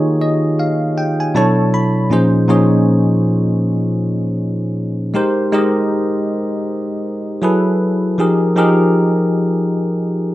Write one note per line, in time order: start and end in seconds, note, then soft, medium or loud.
0.00 1.36 D#3 medium
0.00 1.36 A#3 soft
0.00 1.35 D#4 medium
0.00 1.35 F4 medium
0.00 1.36 G4 medium
0.00 1.36 G#4 medium
0.00 1.36 C#5 medium
0.21 0.56 D#5 medium
0.59 0.94 F5 medium
0.98 1.17 G5 medium
1.20 1.34 G#5 medium
1.34 1.97 B2 medium
1.34 1.98 F#3 medium
1.34 1.98 D4 medium
1.34 1.98 E4 medium
1.34 1.98 A4 medium
1.34 1.99 C#5 medium
1.34 1.70 A5 medium
1.74 2.08 B5 medium
2.10 2.41 A#2 medium
2.10 2.41 F3 medium
2.10 2.41 C#4 medium
2.10 2.42 D#4 medium
2.10 2.42 G#4 medium
2.10 2.42 C5 medium
2.48 3.67 A#2 medium
2.48 3.67 F3 medium
2.48 3.67 C#4 medium
2.48 3.67 D#4 medium
2.48 3.68 G#4 medium
2.48 3.68 C#5 medium
5.14 5.45 G#3 medium
5.14 5.45 D#4 medium
5.14 5.45 G4 medium
5.14 5.46 A#4 medium
5.14 5.46 C5 medium
5.52 6.71 G#3 medium
5.52 6.71 D#4 medium
5.52 6.71 G4 medium
5.52 6.72 A#4 medium
5.52 6.72 D#5 medium
7.42 8.05 F#3 medium
7.42 8.05 E4 medium
7.42 8.05 G#4 medium
7.42 8.06 A4 medium
7.42 8.06 B4 medium
8.18 8.49 F3 medium
8.18 8.49 D#4 medium
8.18 8.49 G4 medium
8.18 8.50 G#4 medium
8.18 8.50 A#4 medium
8.56 9.75 F3 medium
8.56 9.75 D#4 medium
8.56 9.75 G4 medium
8.56 9.76 G#4 medium
8.56 9.76 A#4 medium